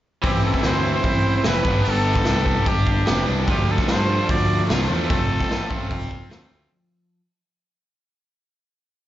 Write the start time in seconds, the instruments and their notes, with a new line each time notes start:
0.22 fingered electric bass A1, overdriven electric guitar E3 C4 E4, trumpet G4, kick, open hi-hat
0.44 trumpet A4
0.54 kick, snare
0.63 fingered electric bass D2, overdriven electric guitar E3 C4 E4, trumpet C5, snare, open hi-hat
0.83 overdriven electric guitar C4 E4
0.95 trumpet C5
1.04 fingered electric bass A1, kick, open hi-hat
1.37 trumpet C5
1.44 fingered electric bass F1, overdriven electric guitar E3 C4 E4, trumpet B4, snare, open hi-hat
1.63 fingered electric bass G1, overdriven electric guitar B3 D4 G4, kick
1.82 fingered electric bass G1, overdriven electric guitar B3 D4 G4, open hi-hat
1.90 trumpet A4
2.15 kick, snare
2.24 fingered electric bass C2, overdriven electric guitar B3 D4 G4, snare, open hi-hat
2.45 overdriven electric guitar D4 G4, kick
2.66 fingered electric bass G1, trumpet G4, kick, open hi-hat
2.87 kick
3.06 fingered electric bass F1, overdriven electric guitar B3 D4 G4, snare, open hi-hat
3.26 fingered electric bass C2, overdriven electric guitar D4 G4
3.47 fingered electric bass D2, overdriven electric guitar F3 A3 D4 F4, trumpet G4, kick, open hi-hat
3.71 trumpet A4
3.78 kick, snare
3.88 fingered electric bass G2, overdriven electric guitar F3 A3 D4 F4, trumpet C5, snare, open hi-hat
4.08 overdriven electric guitar A3 D4 F4
4.29 fingered electric bass D2, trumpet D5, kick, open hi-hat
4.69 fingered electric bass C2, overdriven electric guitar F3 A3 D4 F4, snare, open hi-hat
4.88 fingered electric bass E2, overdriven electric guitar A3 D4 F4
4.93 trumpet A4
5.10 fingered electric bass F1, overdriven electric guitar A3 C4 F4, kick, open hi-hat
5.40 kick, snare
5.49 fingered electric bass A1, overdriven electric guitar A3 C4 F4, snare, open hi-hat
5.69 overdriven electric guitar C4 F4, kick
5.91 fingered electric bass F1, kick, open hi-hat
6.11 kick
6.30 fingered electric bass D2, overdriven electric guitar A3 C4 F4, snare, open hi-hat
6.49 fingered electric bass D2, overdriven electric guitar C4 F4